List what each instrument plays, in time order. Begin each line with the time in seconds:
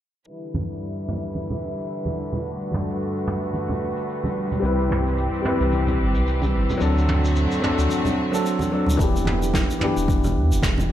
0.27 string section D3 E3 G3 E4 B4, shaker
0.43 shaker
0.54 mid tom, high conga
0.71 shaker
0.82 shaker
0.98 shaker
1.08 mid tom
1.25 shaker
1.35 high conga, shaker
1.50 low conga, shaker
1.80 shaker
1.91 shaker
2.05 high conga, low conga, shaker
2.33 low conga, shaker
2.45 string section G3 A3 F#4, shaker
2.60 shaker
2.72 mid tom, high conga
2.89 shaker
3.01 shaker
3.17 shaker
3.27 mid tom
3.43 shaker
3.54 high conga, shaker
3.69 low conga, shaker
3.97 shaker
4.09 shaker
4.24 high conga, low conga, shaker
4.52 low conga, shaker
4.60 sub bass C2, string section E3 C4 G4, grand piano G3 C4
4.64 grand piano E4 B4, shaker
4.80 shaker
4.90 mid tom, high conga
5.07 shaker
5.18 shaker
5.33 shaker
5.42 grand piano G3 C4 E4, mid tom
5.48 grand piano B4
5.60 sub bass C2, shaker
5.72 high conga, shaker
5.87 low conga, shaker
5.99 sub bass G1
6.15 sub bass C2, shaker
6.27 shaker
6.42 high conga, low conga, shaker
6.54 sub bass G1
6.70 low conga, shaker
6.77 string section D3 F#3 A3 C4 F#4, grand piano F#3 C4, shaker
6.81 sub bass D2, grand piano D4 A4
6.98 shaker
7.09 mid tom, high conga
7.25 shaker
7.36 shaker
7.52 shaker
7.60 grand piano F#3 C4 D4, mid tom
7.66 grand piano A4
7.78 sub bass D2, shaker
7.89 high conga, shaker
8.05 low conga, shaker
8.32 grand piano F#3 C4 D4 A4, shaker
8.46 shaker
8.59 high conga, low conga, shaker
8.71 grand piano F#3 C4 D4 A4
8.86 sub bass D2, low conga, shaker
8.97 sub bass E1, grand piano E3 B3 D4, kick, shaker
9.03 grand piano G4
9.16 shaker
9.25 mid tom, high conga
9.43 shaker
9.54 kick, snare, shaker
9.70 shaker
9.79 grand piano E3 B3 D4, mid tom
9.84 grand piano G4
9.97 sub bass E1, shaker
10.08 kick, high conga, shaker
10.24 low conga, shaker
10.35 sub bass E2
10.51 sub bass E1, shaker
10.63 kick, snare, shaker
10.78 high conga, low conga, shaker